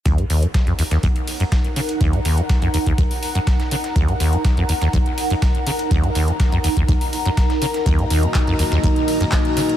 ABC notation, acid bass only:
X:1
M:4/4
L:1/16
Q:1/4=123
K:Ebm
V:1 name="Acid bass" clef=bass
E,, A,, E,, G,, z F,, E,, E,, E,, z2 G,, z2 D, z | E,, A,, E,, G,, z F,, E,, E,, E,, z2 G,, z2 D, z | E,, A,, E,, G,, z F,, E,, E,, E,, z2 G,, z2 D, z | E,, A,, E,, G,, z F,, E,, E,, E,, z2 G,, z2 D, z |
E,, A,, E,, G,, z F,, E,, E,, E,, z2 G,, z2 D, z |]